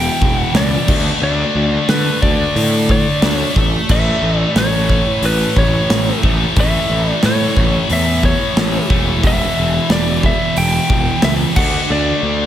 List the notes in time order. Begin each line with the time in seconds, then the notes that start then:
Already playing: E2 B2 E3 G5
0.21 E1, kick
0.38 F#5
0.54 C#2 D5, snare, open hi-hat
0.88 D2 D3 A3, kick, crash
0.92 D4
1.22 D2 D5
1.55 D2
1.89 D3 B4, snare, open hi-hat
2.22 D2 D5, kick
2.56 A2, open hi-hat
2.89 D5, kick
3.22 D2 D3 A3, snare, open hi-hat
3.26 D4
3.34 C#5
3.56 A1, kick
3.89 A1 A2 E3 A3 E5, kick, crash
4.22 A1
4.38 D5
4.56 A1 C#5, snare, open hi-hat
4.90 kick
5.23 A1 B4, open hi-hat
5.56 A1 C#5, kick
5.90 A1, snare, open hi-hat
6.23 A1 E3 A3, kick
6.27 A2
6.56 A1 A2 E3 A3, kick, open hi-hat
6.60 E5
6.89 A1
7.10 D5
7.23 A2 C#5, snare, open hi-hat
7.57 A1, kick
7.90 E2 E5, open hi-hat
8.23 C#5, kick
8.57 A1, snare, open hi-hat
8.90 E1 E3 A3, kick
8.94 A2
9.23 E1 E2 B2 E5, kick, open hi-hat
9.27 E3
9.57 E1
9.90 E1 D5, snare, open hi-hat
10.23 E5, kick
10.57 E1 G5, open hi-hat
10.90 E1, kick
11.22 C#2 E5, snare, open hi-hat
11.56 D2 D3 A3 F#5, kick, crash
11.60 D4
11.90 D2 D5
12.23 D2